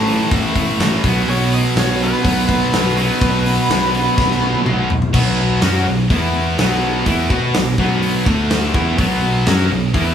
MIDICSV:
0, 0, Header, 1, 7, 480
1, 0, Start_track
1, 0, Tempo, 481541
1, 1276, Time_signature, 4, 2, 24, 8
1, 10114, End_track
2, 0, Start_track
2, 0, Title_t, "Lead electric guitar"
2, 0, Program_c, 0, 29
2, 0, Note_on_c, 0, 81, 100
2, 286, Note_off_c, 0, 81, 0
2, 1292, Note_on_c, 0, 73, 101
2, 1532, Note_off_c, 0, 73, 0
2, 1534, Note_on_c, 0, 75, 102
2, 1597, Note_off_c, 0, 75, 0
2, 1789, Note_on_c, 0, 73, 97
2, 2021, Note_off_c, 0, 73, 0
2, 2029, Note_on_c, 0, 71, 91
2, 4619, Note_off_c, 0, 71, 0
2, 10114, End_track
3, 0, Start_track
3, 0, Title_t, "Distorted electric guitar"
3, 0, Program_c, 1, 30
3, 0, Note_on_c, 1, 45, 96
3, 0, Note_on_c, 1, 52, 99
3, 0, Note_on_c, 1, 57, 100
3, 292, Note_off_c, 1, 45, 0
3, 299, Note_off_c, 1, 52, 0
3, 303, Note_on_c, 1, 45, 74
3, 306, Note_off_c, 1, 57, 0
3, 324, Note_on_c, 1, 52, 85
3, 330, Note_on_c, 1, 57, 86
3, 528, Note_off_c, 1, 57, 0
3, 534, Note_off_c, 1, 45, 0
3, 540, Note_on_c, 1, 57, 94
3, 542, Note_off_c, 1, 52, 0
3, 554, Note_on_c, 1, 52, 88
3, 564, Note_on_c, 1, 45, 73
3, 1014, Note_off_c, 1, 57, 0
3, 1021, Note_off_c, 1, 52, 0
3, 1023, Note_off_c, 1, 45, 0
3, 1027, Note_on_c, 1, 47, 95
3, 1047, Note_on_c, 1, 54, 102
3, 1058, Note_on_c, 1, 59, 98
3, 2216, Note_off_c, 1, 47, 0
3, 2220, Note_on_c, 1, 47, 79
3, 2232, Note_off_c, 1, 54, 0
3, 2236, Note_on_c, 1, 54, 72
3, 2248, Note_off_c, 1, 59, 0
3, 2252, Note_on_c, 1, 59, 84
3, 2464, Note_off_c, 1, 59, 0
3, 2468, Note_on_c, 1, 59, 93
3, 2480, Note_off_c, 1, 54, 0
3, 2484, Note_on_c, 1, 54, 90
3, 2489, Note_off_c, 1, 47, 0
3, 2493, Note_on_c, 1, 47, 72
3, 2943, Note_off_c, 1, 47, 0
3, 2947, Note_on_c, 1, 47, 90
3, 2956, Note_off_c, 1, 54, 0
3, 2960, Note_on_c, 1, 54, 96
3, 2971, Note_off_c, 1, 59, 0
3, 2975, Note_on_c, 1, 59, 103
3, 4133, Note_off_c, 1, 47, 0
3, 4145, Note_on_c, 1, 47, 75
3, 4148, Note_off_c, 1, 54, 0
3, 4156, Note_off_c, 1, 59, 0
3, 4163, Note_on_c, 1, 54, 81
3, 4175, Note_on_c, 1, 59, 88
3, 4380, Note_off_c, 1, 47, 0
3, 4384, Note_off_c, 1, 59, 0
3, 4389, Note_off_c, 1, 54, 0
3, 4396, Note_on_c, 1, 59, 84
3, 4408, Note_on_c, 1, 54, 82
3, 4422, Note_on_c, 1, 47, 72
3, 4865, Note_off_c, 1, 59, 0
3, 4871, Note_off_c, 1, 54, 0
3, 4879, Note_off_c, 1, 47, 0
3, 5113, Note_on_c, 1, 47, 95
3, 5120, Note_on_c, 1, 54, 89
3, 5127, Note_on_c, 1, 59, 103
3, 5582, Note_off_c, 1, 54, 0
3, 5590, Note_off_c, 1, 47, 0
3, 5594, Note_on_c, 1, 54, 93
3, 5598, Note_off_c, 1, 59, 0
3, 5600, Note_on_c, 1, 61, 102
3, 5608, Note_on_c, 1, 66, 100
3, 5829, Note_off_c, 1, 54, 0
3, 5835, Note_off_c, 1, 61, 0
3, 5839, Note_off_c, 1, 66, 0
3, 5840, Note_on_c, 1, 47, 68
3, 5841, Note_on_c, 1, 54, 70
3, 6034, Note_off_c, 1, 47, 0
3, 6035, Note_off_c, 1, 54, 0
3, 6082, Note_on_c, 1, 52, 81
3, 6090, Note_on_c, 1, 59, 104
3, 6095, Note_on_c, 1, 64, 94
3, 6552, Note_off_c, 1, 59, 0
3, 6556, Note_off_c, 1, 52, 0
3, 6560, Note_off_c, 1, 64, 0
3, 6560, Note_on_c, 1, 47, 106
3, 6564, Note_on_c, 1, 54, 106
3, 6564, Note_on_c, 1, 59, 113
3, 7032, Note_off_c, 1, 47, 0
3, 7033, Note_off_c, 1, 59, 0
3, 7036, Note_off_c, 1, 54, 0
3, 7036, Note_on_c, 1, 52, 98
3, 7044, Note_on_c, 1, 59, 93
3, 7046, Note_on_c, 1, 64, 99
3, 7262, Note_off_c, 1, 59, 0
3, 7272, Note_off_c, 1, 52, 0
3, 7274, Note_off_c, 1, 64, 0
3, 7274, Note_on_c, 1, 59, 85
3, 7278, Note_on_c, 1, 66, 95
3, 7286, Note_on_c, 1, 71, 99
3, 7510, Note_off_c, 1, 59, 0
3, 7513, Note_off_c, 1, 66, 0
3, 7516, Note_off_c, 1, 71, 0
3, 7518, Note_on_c, 1, 47, 70
3, 7523, Note_on_c, 1, 54, 79
3, 7711, Note_off_c, 1, 47, 0
3, 7714, Note_off_c, 1, 54, 0
3, 7765, Note_on_c, 1, 47, 96
3, 7767, Note_on_c, 1, 54, 105
3, 7770, Note_on_c, 1, 59, 104
3, 8234, Note_off_c, 1, 47, 0
3, 8236, Note_off_c, 1, 54, 0
3, 8237, Note_off_c, 1, 59, 0
3, 8238, Note_on_c, 1, 50, 101
3, 8241, Note_on_c, 1, 57, 110
3, 8250, Note_on_c, 1, 62, 93
3, 8710, Note_off_c, 1, 50, 0
3, 8712, Note_off_c, 1, 57, 0
3, 8714, Note_on_c, 1, 52, 92
3, 8716, Note_off_c, 1, 62, 0
3, 8723, Note_on_c, 1, 59, 101
3, 8725, Note_on_c, 1, 64, 112
3, 8945, Note_off_c, 1, 52, 0
3, 8949, Note_on_c, 1, 47, 95
3, 8950, Note_off_c, 1, 59, 0
3, 8953, Note_off_c, 1, 64, 0
3, 8961, Note_on_c, 1, 54, 104
3, 8962, Note_on_c, 1, 59, 104
3, 9423, Note_off_c, 1, 47, 0
3, 9429, Note_off_c, 1, 54, 0
3, 9430, Note_off_c, 1, 59, 0
3, 9440, Note_on_c, 1, 54, 100
3, 9440, Note_on_c, 1, 61, 98
3, 9451, Note_on_c, 1, 66, 117
3, 9664, Note_off_c, 1, 54, 0
3, 9669, Note_off_c, 1, 61, 0
3, 9672, Note_on_c, 1, 47, 69
3, 9674, Note_off_c, 1, 66, 0
3, 9676, Note_on_c, 1, 54, 87
3, 9863, Note_off_c, 1, 47, 0
3, 9866, Note_off_c, 1, 54, 0
3, 9907, Note_on_c, 1, 52, 85
3, 9911, Note_on_c, 1, 59, 101
3, 9919, Note_on_c, 1, 64, 109
3, 10114, Note_off_c, 1, 52, 0
3, 10114, Note_off_c, 1, 59, 0
3, 10114, Note_off_c, 1, 64, 0
3, 10114, End_track
4, 0, Start_track
4, 0, Title_t, "Distorted electric guitar"
4, 0, Program_c, 2, 30
4, 794, Note_on_c, 2, 45, 79
4, 814, Note_on_c, 2, 52, 85
4, 833, Note_on_c, 2, 57, 92
4, 1017, Note_off_c, 2, 45, 0
4, 1031, Note_off_c, 2, 52, 0
4, 1040, Note_off_c, 2, 57, 0
4, 2723, Note_on_c, 2, 47, 84
4, 2749, Note_on_c, 2, 54, 81
4, 2764, Note_on_c, 2, 59, 83
4, 2956, Note_off_c, 2, 47, 0
4, 2981, Note_off_c, 2, 54, 0
4, 2997, Note_off_c, 2, 59, 0
4, 4637, Note_on_c, 2, 47, 74
4, 4661, Note_on_c, 2, 54, 85
4, 4675, Note_on_c, 2, 59, 83
4, 4866, Note_off_c, 2, 47, 0
4, 4878, Note_off_c, 2, 54, 0
4, 4885, Note_off_c, 2, 59, 0
4, 10114, End_track
5, 0, Start_track
5, 0, Title_t, "Distorted electric guitar"
5, 0, Program_c, 3, 30
5, 58, Note_on_c, 3, 57, 82
5, 80, Note_on_c, 3, 52, 76
5, 97, Note_on_c, 3, 45, 70
5, 1014, Note_off_c, 3, 57, 0
5, 1021, Note_off_c, 3, 45, 0
5, 1025, Note_off_c, 3, 52, 0
5, 2008, Note_on_c, 3, 59, 85
5, 2032, Note_on_c, 3, 54, 82
5, 2049, Note_on_c, 3, 47, 68
5, 2957, Note_off_c, 3, 47, 0
5, 2979, Note_off_c, 3, 54, 0
5, 2996, Note_off_c, 3, 59, 0
5, 3927, Note_on_c, 3, 59, 86
5, 3949, Note_on_c, 3, 54, 72
5, 3965, Note_on_c, 3, 47, 67
5, 4872, Note_off_c, 3, 59, 0
5, 4883, Note_off_c, 3, 54, 0
5, 4891, Note_off_c, 3, 47, 0
5, 10114, End_track
6, 0, Start_track
6, 0, Title_t, "Picked electric bass"
6, 0, Program_c, 4, 34
6, 0, Note_on_c, 4, 33, 86
6, 183, Note_off_c, 4, 33, 0
6, 316, Note_on_c, 4, 33, 97
6, 666, Note_off_c, 4, 33, 0
6, 796, Note_on_c, 4, 33, 96
6, 971, Note_off_c, 4, 33, 0
6, 1038, Note_on_c, 4, 35, 91
6, 1213, Note_off_c, 4, 35, 0
6, 1274, Note_on_c, 4, 35, 96
6, 1625, Note_off_c, 4, 35, 0
6, 1753, Note_on_c, 4, 35, 96
6, 2105, Note_off_c, 4, 35, 0
6, 2242, Note_on_c, 4, 35, 97
6, 2591, Note_off_c, 4, 35, 0
6, 2734, Note_on_c, 4, 35, 93
6, 3079, Note_off_c, 4, 35, 0
6, 3203, Note_on_c, 4, 35, 103
6, 3553, Note_off_c, 4, 35, 0
6, 3685, Note_on_c, 4, 35, 96
6, 4035, Note_off_c, 4, 35, 0
6, 4165, Note_on_c, 4, 35, 91
6, 4514, Note_off_c, 4, 35, 0
6, 4645, Note_on_c, 4, 35, 92
6, 4995, Note_off_c, 4, 35, 0
6, 5124, Note_on_c, 4, 35, 97
6, 5570, Note_off_c, 4, 35, 0
6, 5597, Note_on_c, 4, 42, 96
6, 5824, Note_off_c, 4, 42, 0
6, 5839, Note_on_c, 4, 35, 80
6, 6064, Note_off_c, 4, 35, 0
6, 6083, Note_on_c, 4, 40, 97
6, 6529, Note_off_c, 4, 40, 0
6, 6565, Note_on_c, 4, 35, 94
6, 7010, Note_off_c, 4, 35, 0
6, 7046, Note_on_c, 4, 40, 94
6, 7267, Note_off_c, 4, 40, 0
6, 7278, Note_on_c, 4, 47, 95
6, 7503, Note_off_c, 4, 47, 0
6, 7524, Note_on_c, 4, 35, 86
6, 7746, Note_off_c, 4, 35, 0
6, 7756, Note_on_c, 4, 35, 100
6, 8203, Note_off_c, 4, 35, 0
6, 8236, Note_on_c, 4, 38, 95
6, 8683, Note_off_c, 4, 38, 0
6, 8714, Note_on_c, 4, 40, 97
6, 8938, Note_off_c, 4, 40, 0
6, 8957, Note_on_c, 4, 35, 95
6, 9401, Note_off_c, 4, 35, 0
6, 9439, Note_on_c, 4, 42, 100
6, 9659, Note_off_c, 4, 42, 0
6, 9674, Note_on_c, 4, 35, 84
6, 9896, Note_off_c, 4, 35, 0
6, 9913, Note_on_c, 4, 40, 91
6, 10114, Note_off_c, 4, 40, 0
6, 10114, End_track
7, 0, Start_track
7, 0, Title_t, "Drums"
7, 71, Note_on_c, 9, 46, 58
7, 171, Note_off_c, 9, 46, 0
7, 313, Note_on_c, 9, 46, 81
7, 314, Note_on_c, 9, 36, 114
7, 413, Note_off_c, 9, 36, 0
7, 413, Note_off_c, 9, 46, 0
7, 552, Note_on_c, 9, 46, 66
7, 554, Note_on_c, 9, 36, 93
7, 652, Note_off_c, 9, 46, 0
7, 653, Note_off_c, 9, 36, 0
7, 796, Note_on_c, 9, 46, 83
7, 803, Note_on_c, 9, 38, 112
7, 895, Note_off_c, 9, 46, 0
7, 902, Note_off_c, 9, 38, 0
7, 1036, Note_on_c, 9, 36, 109
7, 1038, Note_on_c, 9, 46, 68
7, 1136, Note_off_c, 9, 36, 0
7, 1137, Note_off_c, 9, 46, 0
7, 1275, Note_on_c, 9, 46, 81
7, 1374, Note_off_c, 9, 46, 0
7, 1517, Note_on_c, 9, 46, 70
7, 1616, Note_off_c, 9, 46, 0
7, 1757, Note_on_c, 9, 46, 95
7, 1764, Note_on_c, 9, 38, 113
7, 1857, Note_off_c, 9, 46, 0
7, 1864, Note_off_c, 9, 38, 0
7, 2000, Note_on_c, 9, 46, 58
7, 2100, Note_off_c, 9, 46, 0
7, 2238, Note_on_c, 9, 46, 91
7, 2239, Note_on_c, 9, 36, 115
7, 2337, Note_off_c, 9, 46, 0
7, 2339, Note_off_c, 9, 36, 0
7, 2476, Note_on_c, 9, 46, 70
7, 2479, Note_on_c, 9, 36, 97
7, 2576, Note_off_c, 9, 46, 0
7, 2579, Note_off_c, 9, 36, 0
7, 2722, Note_on_c, 9, 46, 87
7, 2729, Note_on_c, 9, 38, 112
7, 2821, Note_off_c, 9, 46, 0
7, 2828, Note_off_c, 9, 38, 0
7, 2963, Note_on_c, 9, 46, 68
7, 3063, Note_off_c, 9, 46, 0
7, 3204, Note_on_c, 9, 36, 117
7, 3208, Note_on_c, 9, 46, 79
7, 3304, Note_off_c, 9, 36, 0
7, 3308, Note_off_c, 9, 46, 0
7, 3447, Note_on_c, 9, 46, 64
7, 3546, Note_off_c, 9, 46, 0
7, 3688, Note_on_c, 9, 46, 77
7, 3695, Note_on_c, 9, 38, 119
7, 3788, Note_off_c, 9, 46, 0
7, 3795, Note_off_c, 9, 38, 0
7, 3930, Note_on_c, 9, 46, 55
7, 4030, Note_off_c, 9, 46, 0
7, 4166, Note_on_c, 9, 36, 122
7, 4179, Note_on_c, 9, 38, 67
7, 4265, Note_off_c, 9, 36, 0
7, 4279, Note_off_c, 9, 38, 0
7, 4299, Note_on_c, 9, 38, 60
7, 4399, Note_off_c, 9, 38, 0
7, 4535, Note_on_c, 9, 48, 63
7, 4635, Note_off_c, 9, 48, 0
7, 4647, Note_on_c, 9, 47, 97
7, 4747, Note_off_c, 9, 47, 0
7, 4886, Note_on_c, 9, 43, 104
7, 4985, Note_off_c, 9, 43, 0
7, 5003, Note_on_c, 9, 43, 84
7, 5103, Note_off_c, 9, 43, 0
7, 5121, Note_on_c, 9, 49, 115
7, 5123, Note_on_c, 9, 36, 114
7, 5221, Note_off_c, 9, 49, 0
7, 5223, Note_off_c, 9, 36, 0
7, 5597, Note_on_c, 9, 46, 63
7, 5604, Note_on_c, 9, 38, 110
7, 5696, Note_off_c, 9, 46, 0
7, 5703, Note_off_c, 9, 38, 0
7, 6083, Note_on_c, 9, 36, 106
7, 6086, Note_on_c, 9, 46, 65
7, 6183, Note_off_c, 9, 36, 0
7, 6185, Note_off_c, 9, 46, 0
7, 6561, Note_on_c, 9, 46, 59
7, 6568, Note_on_c, 9, 38, 116
7, 6661, Note_off_c, 9, 46, 0
7, 6668, Note_off_c, 9, 38, 0
7, 6690, Note_on_c, 9, 38, 33
7, 6790, Note_off_c, 9, 38, 0
7, 7037, Note_on_c, 9, 46, 57
7, 7040, Note_on_c, 9, 36, 106
7, 7137, Note_off_c, 9, 46, 0
7, 7140, Note_off_c, 9, 36, 0
7, 7279, Note_on_c, 9, 36, 108
7, 7379, Note_off_c, 9, 36, 0
7, 7515, Note_on_c, 9, 46, 61
7, 7522, Note_on_c, 9, 38, 119
7, 7615, Note_off_c, 9, 46, 0
7, 7622, Note_off_c, 9, 38, 0
7, 7757, Note_on_c, 9, 36, 93
7, 7857, Note_off_c, 9, 36, 0
7, 7999, Note_on_c, 9, 46, 61
7, 8099, Note_off_c, 9, 46, 0
7, 8237, Note_on_c, 9, 36, 106
7, 8337, Note_off_c, 9, 36, 0
7, 8474, Note_on_c, 9, 46, 62
7, 8481, Note_on_c, 9, 38, 114
7, 8574, Note_off_c, 9, 46, 0
7, 8581, Note_off_c, 9, 38, 0
7, 8716, Note_on_c, 9, 36, 116
7, 8816, Note_off_c, 9, 36, 0
7, 8956, Note_on_c, 9, 36, 107
7, 8958, Note_on_c, 9, 46, 67
7, 9056, Note_off_c, 9, 36, 0
7, 9058, Note_off_c, 9, 46, 0
7, 9431, Note_on_c, 9, 46, 64
7, 9438, Note_on_c, 9, 38, 120
7, 9531, Note_off_c, 9, 46, 0
7, 9538, Note_off_c, 9, 38, 0
7, 9909, Note_on_c, 9, 46, 73
7, 9911, Note_on_c, 9, 36, 113
7, 10009, Note_off_c, 9, 46, 0
7, 10011, Note_off_c, 9, 36, 0
7, 10114, End_track
0, 0, End_of_file